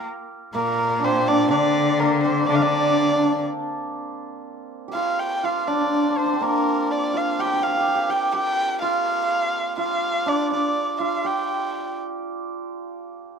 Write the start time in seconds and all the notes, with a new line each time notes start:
Already playing: F4 G4 A#4
0.55 A#2 A#3 A#4
0.99 D4
1.04 C4 C5
1.28 D4 D5
1.51 D3 D4 D5
2.00 A#3 A#4
2.24 C4 C5
2.47 D3 D4 D5
2.55 F5
2.62 D3 D4 D5
2.73 D4
2.78 D4
2.88 D4
2.95 D4
3.02 D4
3.10 D4
3.15 D4
3.23 D4
3.31 D4
4.88 G4
4.94 F4 F5
5.19 G5
5.43 F4 F5
5.67 D4 D5
5.73 D4
5.81 D4
5.87 D4
5.94 D4
6.03 D4
6.10 D4
6.17 D4 C5
6.26 D4
6.33 C4
6.41 A#3 A#4
6.91 D5
7.13 F4 F5
7.39 G4 G5
7.46 G4
7.53 G4
7.60 G4 F5
7.67 G4
7.75 G4
7.80 G4
7.88 G4
7.95 G4
8.09 G4 G5
8.33 G4 G5
8.82 F4 F5
9.78 F4 F5
10.26 D4 D5
10.52 D4 D5
11.00 F4 F5
11.24 G4 G5